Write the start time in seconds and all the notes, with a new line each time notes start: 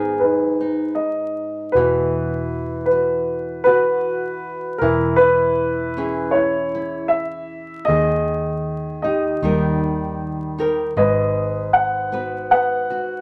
Already playing: G#1 G#2 B3 D#4 G#4 A#4
0.20 D#4 B4
0.61 D#4
0.95 D#5
1.72 E1 F#4 B4
1.76 E3 B3 F#4
2.85 B4
2.91 F#4
3.64 F#4 B4
4.78 E1 E3 E4 A#4
5.16 E4 B4
5.97 C#4 E4 G#4
6.31 E4 C#5
6.75 E4
7.08 E5
7.85 D#2 D#3 G#4 D#5
9.02 D#4 G4 D#5
9.42 D#2 D#3 G3 D#4 G4 A#4
10.58 D#4 G4 A#4
10.96 G#1 G#2 B4 D#5
11.73 F#5
12.12 B3 F#4 B4
12.51 B4 F#5
12.90 F#4